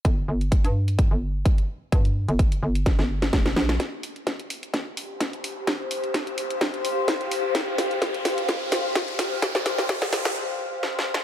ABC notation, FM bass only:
X:1
M:4/4
L:1/16
Q:"Swing 16ths" 1/4=128
K:Cdor
V:1 name="FM bass" clef=bass
G,,,2 G,,,3 G,,4 G,,,3 z4 | G,,3 G,,,3 G,,,3 G,,,3 F,,,2 B,,,2 | z16 | z16 |
z16 | z16 |]